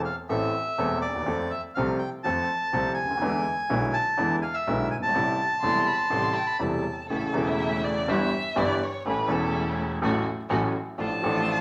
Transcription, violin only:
5.61 5.89 C6 medium
5.87 6.00 B5 medium
5.98 6.10 C6 medium
6.11 6.37 C6 medium
6.35 6.48 G5 medium
6.47 6.63 B5 medium
6.61 7.09 A5 medium
7.09 7.49 A4 medium
7.47 7.86 E5 medium
7.84 8.11 D5 medium
8.09 8.59 E5 medium
8.57 8.85 D5 medium
8.83 9.07 C#5 medium
9.07 9.34 B4 medium
9.32 9.79 A4 medium
11.01 11.61 A5 loud

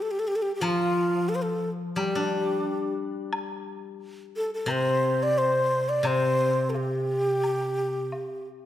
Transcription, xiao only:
0.02 0.13 A4 medium
0.11 0.21 G4 medium
0.19 0.29 A4 medium
0.28 0.37 G4 medium
0.36 0.44 A4 medium
0.42 0.55 G4 medium
0.55 0.63 G4 medium
0.61 1.30 F4 medium
1.29 1.37 A4 medium
1.35 1.44 C5 medium
1.42 1.70 A4 medium
1.96 2.94 G4 medium
4.36 4.50 A4 medium
4.54 4.74 A4 medium
4.72 5.24 C5 medium
5.23 5.39 D5 loud
5.38 5.90 C5 medium
5.89 6.08 D5 medium
6.07 6.71 C5 medium
6.70 6.78 A4 soft
6.76 8.48 G4 medium

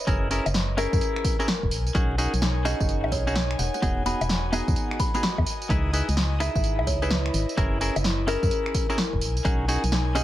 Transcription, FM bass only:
0.07 0.40 F#1 loud
0.46 0.87 F#1 loud
0.93 0.99 F#2 loud
1.63 1.73 E1 loud
1.72 1.91 B1 loud
1.95 2.27 B1 loud
2.33 2.74 B1 medium
2.80 3.05 F#1 loud
3.04 3.56 B1 medium
3.59 3.70 E1 medium
3.82 4.15 E1 loud
4.21 4.62 E1 medium
4.68 4.74 E2 loud
5.38 5.44 E2 loud
5.70 6.02 C#2 loud
6.09 6.49 C#2 medium
6.55 6.80 G#1 loud
6.79 7.31 C#2 medium
7.34 7.45 G#1 medium
7.57 7.90 F#1 loud
7.96 8.37 F#1 medium
8.43 8.49 F#2 loud
9.13 9.23 E1 loud
9.21 9.41 B1 loud
9.45 9.77 B1 loud
9.84 10.24 B1 medium

